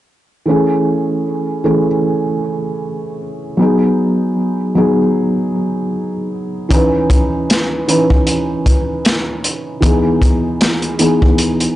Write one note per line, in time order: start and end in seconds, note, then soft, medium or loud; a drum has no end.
0.46 1.59 E3 medium
0.46 1.60 A3 medium
0.46 1.61 C#4 medium
0.50 1.62 G#4 medium
1.64 1.85 E3 medium
1.64 1.86 A3 medium
1.64 1.86 C#4 medium
1.64 1.86 G#4 medium
3.57 4.71 F#3 medium
3.57 4.72 B3 medium
3.57 4.73 D#4 medium
3.62 4.74 G#4 medium
4.75 4.97 F#3 medium
4.75 4.97 B3 medium
4.75 4.98 D#4 medium
4.75 4.98 G#4 medium
6.69 7.83 E3 medium
6.69 7.84 C#4 medium
6.69 7.84 D#4 medium
6.69 kick medium
6.69 closed hi-hat medium
6.74 7.85 B4 medium
7.10 kick medium
7.10 closed hi-hat medium
7.50 snare medium
7.50 closed hi-hat medium
7.88 8.09 E3 medium
7.88 8.09 C#4 medium
7.88 8.10 D#4 medium
7.88 8.10 B4 medium
7.88 closed hi-hat medium
8.10 kick medium
8.27 closed hi-hat medium
8.66 kick medium
8.66 closed hi-hat medium
9.05 snare medium
9.05 closed hi-hat medium
9.44 closed hi-hat medium
9.81 10.94 E3 medium
9.81 10.95 B3 medium
9.81 10.96 D#4 medium
9.81 kick loud
9.81 closed hi-hat medium
9.85 10.97 G#4 medium
10.22 kick medium
10.22 closed hi-hat medium
10.61 snare loud
10.61 closed hi-hat medium
10.82 closed hi-hat soft
10.99 11.20 E3 medium
10.99 11.21 B3 medium
10.99 11.21 D#4 medium
10.99 11.22 G#4 medium
10.99 closed hi-hat medium
11.22 kick medium
11.38 closed hi-hat medium
11.60 closed hi-hat soft